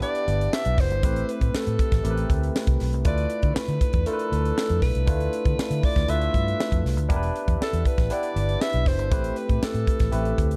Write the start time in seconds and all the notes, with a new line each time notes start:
Already playing: D4 E4 G4 B4
0.00 B3 D4 E4 G4 B4 D5, closed hi-hat
0.15 closed hi-hat
0.28 G1, closed hi-hat
0.41 closed hi-hat
0.53 E5, snare
0.65 B1, closed hi-hat
0.78 F1 C5, kick, snare, open hi-hat
0.90 G1, closed hi-hat
1.03 A1 A3 C4 E4 G4 B4, kick, closed hi-hat
1.16 closed hi-hat
1.29 B4, closed hi-hat
1.41 A2, kick, closed hi-hat
1.54 A4, muted fingered electric bass stroke, snare
1.67 A2, closed hi-hat
1.79 kick, closed hi-hat
1.92 A1, kick, snare, closed hi-hat
2.03 A1 A3 C4 E4 G4 A#4, closed hi-hat
2.11 B4
2.17 closed hi-hat
2.30 D2, kick, closed hi-hat
2.43 closed hi-hat
2.56 snare
2.67 C2, kick, closed hi-hat
2.80 B1, snare, open hi-hat
2.93 C2, closed hi-hat
3.04 D2 A3 D4 E4 F4 B4 D5, kick, closed hi-hat
3.18 closed hi-hat
3.30 closed hi-hat
3.42 D3, kick, closed hi-hat
3.55 B4, muted fingered electric bass stroke, snare
3.68 D3, closed hi-hat
3.81 kick, closed hi-hat
3.93 E2, kick, closed hi-hat
4.06 A3 D4 E4 F4 A4 A#4, closed hi-hat
4.13 B4
4.19 closed hi-hat
4.32 D2, closed hi-hat
4.45 closed hi-hat
4.58 snare
4.69 F2, closed hi-hat
4.82 B1 B4, kick, snare, open hi-hat
4.95 C2, closed hi-hat
5.06 D2 A3 D4 E4 F4 B4, kick, closed hi-hat
5.20 closed hi-hat
5.33 closed hi-hat
5.45 D3, kick, closed hi-hat
5.58 muted fingered electric bass stroke, snare
5.71 D3, closed hi-hat
5.83 D5, kick, open hi-hat
5.96 D2, kick, snare, closed hi-hat
6.08 D2 A3 D4 E4 F4 B4 E5, closed hi-hat
6.21 closed hi-hat
6.34 G2, kick, closed hi-hat
6.48 closed hi-hat
6.60 snare
6.72 F2, kick, closed hi-hat
6.84 C2, snare, open hi-hat
6.97 D2, closed hi-hat
7.09 E1 B3 D4 E4 G4 A#4, kick, closed hi-hat
7.16 B4
7.23 closed hi-hat
7.36 closed hi-hat
7.48 E2, kick, closed hi-hat
7.61 A4, muted fingered electric bass stroke, snare
7.73 E2, closed hi-hat
7.85 B4, kick, closed hi-hat
7.98 A1, kick, snare, closed hi-hat
8.10 B3 D4 E4 G4 B4 D5, closed hi-hat
8.23 closed hi-hat
8.36 G1, closed hi-hat
8.49 closed hi-hat
8.61 E5, snare
8.73 B1, closed hi-hat
8.86 F1 C5, kick, snare, open hi-hat
8.99 G1, closed hi-hat
9.11 A1 A3 C4 E4 G4 B4, kick, closed hi-hat
9.24 closed hi-hat
9.36 B4, closed hi-hat
9.49 A2, kick, closed hi-hat
9.63 A4, muted fingered electric bass stroke, snare
9.74 A2, closed hi-hat
9.87 kick, closed hi-hat
9.99 A1, kick, snare, closed hi-hat
10.11 A1 A3 C4 E4 G4 B4, closed hi-hat
10.25 closed hi-hat
10.38 D2, kick, closed hi-hat
10.51 closed hi-hat